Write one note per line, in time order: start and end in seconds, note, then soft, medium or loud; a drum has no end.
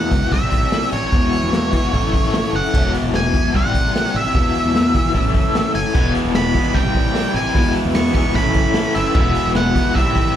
0.00 0.31 E2 medium
0.00 0.32 B2 loud
0.00 0.13 E3 medium
0.00 0.33 E3 loud
0.00 0.11 G#3 medium
0.00 0.10 B3 loud
0.00 0.33 F#5 medium
0.10 0.20 C#2 loud
0.10 0.31 E3 medium
0.10 0.31 G#3 medium
0.10 0.30 B3 medium
0.10 0.34 E4 loud
0.10 kick loud
0.10 open hi-hat medium
0.31 0.42 C2 loud
0.31 0.91 C3 medium
0.31 0.91 G3 medium
0.31 0.91 C4 loud
0.31 0.91 E4 loud
0.31 0.88 E5 medium
0.31 kick medium
0.31 open hi-hat medium
0.42 0.60 A1 medium
0.51 kick medium
0.51 open hi-hat medium
0.63 snare soft
0.72 snare loud
0.72 open hi-hat medium
0.91 1.01 A1 medium
0.91 1.10 C3 medium
0.91 1.11 G3 medium
0.91 1.11 C4 medium
0.91 1.14 E4 medium
0.91 2.58 C#5 medium
0.91 open hi-hat medium
1.11 1.91 E2 loud
1.11 1.30 E2 medium
1.11 1.92 B2 loud
1.11 1.74 E3 medium
1.11 1.71 G#3 loud
1.11 1.71 B3 loud
1.11 1.71 E4 medium
1.11 kick loud
1.11 open hi-hat medium
1.33 open hi-hat medium
1.44 1.52 E2 medium
1.53 1.70 E2 loud
1.53 snare loud
1.53 open hi-hat medium
1.71 1.81 E3 loud
1.71 1.93 E3 medium
1.71 1.92 G#3 medium
1.71 1.91 B3 medium
1.71 1.95 E4 loud
1.71 kick medium
1.71 open hi-hat medium
1.92 2.05 A1 loud
1.92 2.51 A2 medium
1.92 2.54 E3 medium
1.92 2.52 A3 medium
1.92 2.52 C#4 loud
1.92 2.52 E4 loud
1.92 kick medium
1.92 open hi-hat medium
2.03 2.21 F#1 medium
2.14 kick medium
2.14 open hi-hat medium
2.25 snare soft
2.33 snare loud
2.33 open hi-hat medium
2.52 2.62 F#1 medium
2.52 2.73 A2 medium
2.52 2.72 E3 medium
2.52 2.72 A3 loud
2.52 2.72 C#4 medium
2.52 2.75 E4 medium
2.52 2.92 F#5 medium
2.52 open hi-hat medium
2.72 2.92 E1 loud
2.72 3.52 E2 medium
2.72 3.52 B2 loud
2.72 3.36 E3 medium
2.72 3.33 G#3 medium
2.72 3.33 B3 loud
2.72 3.32 E4 loud
2.72 kick loud
2.72 crash medium
2.76 3.54 E3 loud
2.94 open hi-hat medium
3.04 3.12 E1 medium
3.13 3.31 E1 loud
3.13 3.56 G#5 loud
3.13 snare loud
3.13 open hi-hat medium
3.32 3.42 E2 loud
3.32 3.53 G#3 medium
3.32 3.52 B3 medium
3.32 3.56 E4 medium
3.32 kick medium
3.32 open hi-hat medium
3.36 3.53 E3 medium
3.53 3.65 C2 loud
3.53 4.12 C3 loud
3.53 4.16 E3 medium
3.53 4.13 G3 loud
3.53 4.14 C4 loud
3.53 4.13 E4 loud
3.53 4.17 F#5 medium
3.53 kick medium
3.53 open hi-hat medium
3.65 3.82 A1 medium
3.74 kick medium
3.74 open hi-hat medium
3.86 snare soft
3.95 snare loud
3.95 open hi-hat loud
4.14 4.23 A1 medium
4.14 4.34 C3 medium
4.14 4.34 E3 medium
4.14 4.34 G3 medium
4.14 4.33 C4 medium
4.14 4.37 E4 loud
4.14 5.72 E5 medium
4.14 open hi-hat medium
4.33 5.13 E2 loud
4.33 4.52 E2 medium
4.33 5.13 B2 loud
4.33 4.98 E3 loud
4.33 4.94 G#3 medium
4.33 4.94 B3 loud
4.33 kick loud
4.33 open hi-hat medium
4.37 4.94 E4 loud
4.55 open hi-hat medium
4.66 4.74 E2 loud
4.75 4.92 E2 loud
4.75 snare loud
4.75 open hi-hat medium
4.95 5.03 E3 loud
4.95 5.14 E3 medium
4.95 5.14 G#3 medium
4.95 5.14 B3 medium
4.95 5.17 E4 medium
4.95 kick medium
4.95 open hi-hat medium
5.14 5.28 A1 loud
5.14 5.73 A2 loud
5.14 5.76 E3 loud
5.14 5.74 A3 loud
5.14 5.74 C#4 loud
5.14 5.73 E4 loud
5.14 kick medium
5.14 open hi-hat medium
5.26 5.43 F#1 medium
5.34 kick loud
5.34 open hi-hat medium
5.55 snare loud
5.55 open hi-hat medium
5.74 5.84 F#1 medium
5.74 5.93 E3 medium
5.74 5.94 A3 medium
5.74 5.94 C#4 medium
5.74 5.97 E4 loud
5.74 6.12 G#5 medium
5.74 open hi-hat medium
5.78 5.95 A2 medium
5.93 6.12 E1 medium
5.93 6.73 E2 medium
5.93 6.74 B2 loud
5.93 6.57 E3 medium
5.93 6.54 G#3 medium
5.93 6.54 B3 medium
5.93 kick loud
5.93 crash medium
5.97 6.53 E4 loud
6.15 open hi-hat medium
6.25 6.34 E1 medium
6.34 6.52 E1 loud
6.34 6.73 E3 medium
6.34 6.55 G#3 medium
6.34 6.54 B3 medium
6.34 6.53 E4 medium
6.34 6.76 B5 loud
6.34 snare loud
6.34 open hi-hat medium
6.54 6.64 E2 loud
6.54 6.74 E3 medium
6.54 6.74 G#3 medium
6.54 6.74 B3 medium
6.54 6.77 E4 medium
6.54 kick medium
6.54 open hi-hat medium
6.73 6.85 C2 loud
6.73 7.33 C3 loud
6.73 7.36 E3 loud
6.73 7.34 G3 loud
6.73 7.33 C4 loud
6.73 7.36 G5 medium
6.73 kick medium
6.73 open hi-hat medium
6.77 7.34 E4 loud
6.85 7.02 A1 medium
6.94 7.14 G3 medium
6.94 7.14 C4 medium
6.94 7.15 E4 medium
6.94 kick medium
6.94 open hi-hat medium
7.06 snare soft
7.14 7.53 C3 medium
7.14 7.54 E3 medium
7.14 7.54 G3 medium
7.14 7.54 C4 loud
7.14 7.57 E4 medium
7.14 snare loud
7.14 open hi-hat medium
7.34 7.43 A1 medium
7.34 7.55 C3 medium
7.34 7.54 E3 medium
7.34 7.54 G3 medium
7.34 7.54 C4 medium
7.34 7.57 E4 medium
7.34 7.73 G#5 loud
7.34 open hi-hat medium
7.54 8.33 E2 medium
7.54 7.73 E2 medium
7.54 8.33 B2 loud
7.54 8.17 E3 medium
7.54 8.14 G#3 medium
7.54 8.14 B3 medium
7.54 8.14 E4 loud
7.54 kick loud
7.54 open hi-hat medium
7.74 open hi-hat medium
7.85 7.94 E2 medium
7.94 8.13 E2 loud
7.94 8.33 E3 medium
7.94 8.14 G#3 medium
7.94 8.13 B3 medium
7.94 8.12 E4 medium
7.94 8.14 C#6 loud
7.94 snare loud
7.94 open hi-hat medium
8.14 8.24 E2 loud
8.14 8.36 E3 medium
8.14 8.35 G#3 medium
8.14 8.34 B3 medium
8.14 8.38 E4 medium
8.14 8.35 C#6 loud
8.14 kick medium
8.14 open hi-hat medium
8.34 8.47 A1 loud
8.34 8.94 A2 medium
8.34 8.97 E3 medium
8.34 8.95 A3 loud
8.34 8.95 C#4 loud
8.34 8.97 B5 loud
8.34 kick medium
8.34 open hi-hat medium
8.39 8.94 E4 loud
8.46 8.63 F#1 loud
8.54 8.73 A3 medium
8.54 8.73 C#4 medium
8.54 8.76 E4 medium
8.54 kick medium
8.54 open hi-hat medium
8.73 9.13 A2 medium
8.73 9.13 E3 medium
8.73 9.13 A3 medium
8.73 9.14 C#4 loud
8.73 9.16 E4 medium
8.73 snare loud
8.73 open hi-hat medium
8.95 9.04 F#1 loud
8.95 9.16 A2 medium
8.95 9.14 E3 medium
8.95 9.15 A3 medium
8.95 9.14 C#4 medium
8.95 9.18 E4 medium
8.95 9.51 E5 loud
8.95 open hi-hat medium
9.14 9.33 E1 medium
9.14 9.94 E2 medium
9.14 9.93 B2 loud
9.14 9.77 E3 medium
9.14 9.75 G#3 loud
9.14 9.75 B3 loud
9.14 9.74 E4 loud
9.14 kick loud
9.14 crash medium
9.35 open hi-hat medium
9.45 9.54 E1 medium
9.54 9.73 E1 loud
9.54 9.95 E3 medium
9.54 9.75 G#3 medium
9.54 9.74 B3 medium
9.54 9.73 E4 medium
9.54 9.97 F#5 loud
9.54 snare loud
9.54 open hi-hat medium
9.74 9.84 E2 loud
9.74 9.94 E3 medium
9.74 9.95 G#3 medium
9.74 9.94 B3 medium
9.74 9.96 E4 medium
9.74 kick medium
9.74 open hi-hat medium
9.93 10.06 C2 loud
9.93 10.36 C3 medium
9.93 10.36 E3 medium
9.93 10.36 G3 loud
9.93 10.36 C4 loud
9.93 10.36 E4 loud
9.93 10.36 E5 loud
9.93 kick medium
9.93 open hi-hat medium
10.06 10.23 A1 medium
10.14 10.35 G3 medium
10.14 10.35 C4 medium
10.14 10.36 E4 medium
10.14 kick medium
10.14 open hi-hat medium
10.26 snare soft